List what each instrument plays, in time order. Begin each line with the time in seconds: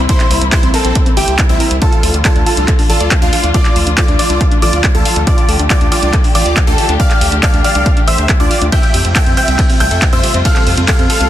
Already playing: string section C3 G3 A#3 E4
0.09 supersaw synth E4 C5, synth pluck A#4, grand piano C6, kick, closed hi-hat
0.20 synth pluck C4, clap, closed hi-hat
0.31 analog synth bass C2, synth pluck C5, open hi-hat
0.41 analog synth bass C2, synth pluck C4, closed hi-hat
0.52 supersaw synth E4 C5, synth pluck G4, grand piano C6, kick, clap, closed hi-hat
0.63 analog synth bass C2, synth pluck C4, closed hi-hat
0.74 supersaw synth C4 A4, synth pluck A#4, grand piano A5, open hi-hat
0.85 analog synth bass A#1, synth pluck C4, closed hi-hat
0.95 synth pluck C5, kick, closed hi-hat
1.06 synth pluck C4, closed hi-hat
1.17 analog synth bass G1, supersaw synth E4 G4, synth pluck G4, grand piano G5, open hi-hat
1.28 analog synth bass C2, synth pluck C5, closed hi-hat
1.39 synth pluck E4, kick, clap, closed hi-hat
1.49 analog synth bass C2, supersaw synth C4 E4, synth pluck C5, grand piano E5, closed hi-hat
1.60 synth pluck A#4, open hi-hat
1.71 analog synth bass C2, synth pluck E4, closed hi-hat
1.82 string section D3 F3 A3 F4, synth pluck D4, supersaw synth F4 A4, grand piano A5, kick, closed hi-hat
1.92 synth pluck A5, closed hi-hat
2.03 analog synth bass D2, synth pluck A4, open hi-hat
2.14 analog synth bass D2, synth pluck D4, closed hi-hat
2.25 supersaw synth F4 A4, synth pluck D5, grand piano A5, kick, clap, closed hi-hat
2.36 analog synth bass D2, synth pluck D4, closed hi-hat
2.46 supersaw synth F4 A4, synth pluck F5, grand piano A5, open hi-hat
2.57 analog synth bass C2, synth pluck D4, closed hi-hat
2.68 synth pluck A4, kick, clap, closed hi-hat
2.79 synth pluck D4, open hi-hat
2.90 analog synth bass A1, supersaw synth F4 A4, synth pluck D5, grand piano A5, open hi-hat
3.00 analog synth bass D2, synth pluck D5, closed hi-hat
3.11 synth pluck F5, kick, clap, closed hi-hat
3.22 analog synth bass D2, supersaw synth D4 F4, synth pluck D4, grand piano F5, closed hi-hat
3.33 synth pluck A4, open hi-hat
3.44 analog synth bass D2, synth pluck D4, closed hi-hat
3.54 supersaw synth F4 D5, synth pluck D5, grand piano D6, kick, closed hi-hat
3.65 synth pluck D4, clap, closed hi-hat
3.76 analog synth bass D2, synth pluck F5, open hi-hat
3.87 analog synth bass D2, synth pluck D4, closed hi-hat
3.98 supersaw synth F4 D5, synth pluck A4, grand piano D6, kick, clap, closed hi-hat
4.08 analog synth bass D2, synth pluck D4, closed hi-hat
4.19 supersaw synth F4 D5, synth pluck D5, grand piano D6, open hi-hat
4.30 analog synth bass C2, synth pluck D4, closed hi-hat
4.41 synth pluck F5, kick, closed hi-hat
4.52 synth pluck D4, closed hi-hat
4.62 analog synth bass A1, supersaw synth F4 D5, synth pluck A4, grand piano D6, open hi-hat
4.73 analog synth bass D2, synth pluck D4, closed hi-hat
4.84 synth pluck D5, kick, clap, closed hi-hat
4.95 analog synth bass D2, synth pluck D4, supersaw synth F4 A4, grand piano A5, closed hi-hat
5.05 synth pluck F5, open hi-hat
5.16 analog synth bass D2, synth pluck D4, closed hi-hat
5.27 synth pluck D4, supersaw synth F4 D5, string section G4, grand piano D6, kick, closed hi-hat
5.38 synth pluck A5, closed hi-hat
5.49 analog synth bass D2, synth pluck A4, open hi-hat
5.59 analog synth bass D2, synth pluck D4, closed hi-hat
5.70 supersaw synth F4 D5, synth pluck D5, grand piano D6, kick, clap, closed hi-hat
5.81 analog synth bass D2, synth pluck D4, closed hi-hat
5.92 supersaw synth F4 D5, synth pluck F5, grand piano D6, open hi-hat
6.03 analog synth bass C2, synth pluck D4, closed hi-hat
6.13 synth pluck A4, kick, clap, closed hi-hat
6.24 synth pluck D4, open hi-hat
6.35 analog synth bass A1, supersaw synth F4 D5, synth pluck D5, grand piano D6, open hi-hat
6.46 analog synth bass D2, synth pluck D5, closed hi-hat
6.57 synth pluck F5, kick, clap, closed hi-hat
6.67 analog synth bass D2, synth pluck D4, supersaw synth F4 A4, grand piano A5, closed hi-hat
6.78 synth pluck A4, open hi-hat
6.89 analog synth bass D2, synth pluck D4, closed hi-hat
7.00 supersaw synth D5 F5, synth pluck D5, grand piano F6, kick, closed hi-hat
7.11 synth pluck D4, clap, closed hi-hat
7.21 analog synth bass D2, synth pluck F5, open hi-hat
7.32 analog synth bass D2, synth pluck D4, closed hi-hat
7.43 synth pluck A4, supersaw synth D5 F5, grand piano F6, kick, clap, closed hi-hat
7.54 analog synth bass D2, synth pluck D4, closed hi-hat
7.64 supersaw synth D5 F5, synth pluck D5, grand piano F6, open hi-hat
7.75 analog synth bass C2, synth pluck D4, closed hi-hat
7.86 synth pluck F5, kick, closed hi-hat
7.97 synth pluck D4, closed hi-hat
8.08 analog synth bass A1, synth pluck A4, supersaw synth C5 E5, grand piano E6, open hi-hat
8.18 analog synth bass D2, synth pluck D4, closed hi-hat
8.29 synth pluck D5, kick, clap, closed hi-hat
8.40 analog synth bass D2, synth pluck D4, supersaw synth F4 D5, grand piano D6, closed hi-hat
8.51 synth pluck F5, open hi-hat
8.62 analog synth bass D2, synth pluck D4, closed hi-hat
8.72 string section C3 G3 F4, synth pluck C4, supersaw synth E5 G5, grand piano G6, kick, closed hi-hat, ride
8.83 synth pluck F5, closed hi-hat
8.94 analog synth bass F2, synth pluck G4, open hi-hat
9.05 analog synth bass F2, synth pluck C4, closed hi-hat
9.16 synth pluck A4, supersaw synth E5 G5, grand piano G6, kick, clap, closed hi-hat, ride
9.26 analog synth bass F2, synth pluck C4, closed hi-hat
9.37 synth pluck C5, supersaw synth E5 G5, grand piano G6, open hi-hat
9.48 analog synth bass C2, synth pluck C4, closed hi-hat
9.59 synth pluck G4, kick, clap, closed hi-hat, ride
9.70 synth pluck C4, open hi-hat
9.80 analog synth bass C2, synth pluck A4, supersaw synth E5 G5, grand piano G6, open hi-hat
9.91 analog synth bass F2, synth pluck A4, closed hi-hat
10.02 synth pluck C5, kick, clap, closed hi-hat, ride
10.13 analog synth bass F2, synth pluck C4, supersaw synth C5 E5, grand piano E6, closed hi-hat
10.23 synth pluck G4, open hi-hat
10.34 analog synth bass F2, synth pluck C4, closed hi-hat
10.45 synth pluck A4, supersaw synth A4 F5, grand piano F6, kick, closed hi-hat, ride
10.56 synth pluck C4, clap, closed hi-hat
10.67 analog synth bass F2, synth pluck C5, open hi-hat
10.77 analog synth bass F2, synth pluck C4, closed hi-hat
10.88 synth pluck G4, supersaw synth A4 F5, grand piano F6, kick, clap, closed hi-hat, ride
10.99 analog synth bass F2, synth pluck C4, closed hi-hat
11.10 supersaw synth A4 F5, synth pluck A4, grand piano F6, open hi-hat
11.21 analog synth bass C2, synth pluck C4, closed hi-hat